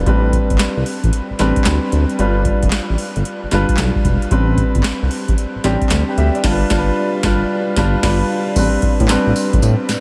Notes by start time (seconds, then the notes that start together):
0.06 A1 G3 C4 D4 B4, kick, closed hi-hat
0.33 kick, closed hi-hat
0.50 G1, kick, closed hi-hat
0.59 snare, clap, closed hi-hat
0.77 C2
0.86 open hi-hat
1.03 A1, kick, closed hi-hat
1.13 closed hi-hat
1.30 A1
1.39 A1 G3 C4 D4 B4, snare, closed hi-hat
1.56 kick, closed hi-hat
1.65 D2, snare, clap, closed hi-hat
1.92 D2, closed hi-hat
2.10 closed hi-hat
2.19 G1 G3 D4 F4 B4, closed hi-hat
2.45 kick, closed hi-hat
2.63 F1, kick, closed hi-hat
2.71 snare, clap, closed hi-hat
2.90 A1
2.98 open hi-hat
3.16 G1, closed hi-hat
3.25 closed hi-hat
3.43 G1
3.51 G1 G3 D4 F4 B4, snare, closed hi-hat
3.69 kick, closed hi-hat
3.77 B1, snare, clap, closed hi-hat
3.96 kick
4.05 E1, kick, closed hi-hat
4.22 closed hi-hat
4.31 A1 G3 C4 D4 B4, kick, closed hi-hat
4.58 kick, closed hi-hat
4.75 G1, kick, closed hi-hat
4.84 snare, clap, closed hi-hat
5.02 C2
5.11 open hi-hat
5.28 A1, kick, closed hi-hat
5.38 closed hi-hat
5.55 A1
5.64 A1 G3 C4 D4 G4, snare, closed hi-hat
5.82 kick, closed hi-hat
5.90 D2, snare, clap, closed hi-hat
6.09 B4 G5
6.17 D2 G4 E5, closed hi-hat
6.35 D5, closed hi-hat
6.44 G1 G3 D4 F4, kick, snare, crash
6.51 B4
6.70 G1 G3 D4 F4, kick, snare
6.78 B4
7.23 G1 G3 D4 F4 B4, kick, snare
7.76 G1 G3 D4 F4 B4, kick, snare
8.03 G1 G3 D4 F4 B4, kick, snare, crash
8.56 A1 G3 C4 D4 B4, kick, closed hi-hat, crash, tambourine
8.82 A2, kick, closed hi-hat
9.00 A2, kick, closed hi-hat
9.08 A1 G3 C4 D4 B4, snare, clap, closed hi-hat, tambourine
9.26 A1
9.36 open hi-hat, tambourine
9.53 A1, kick, closed hi-hat
9.62 A2, closed hi-hat, tambourine
9.89 A2, snare, closed hi-hat, tambourine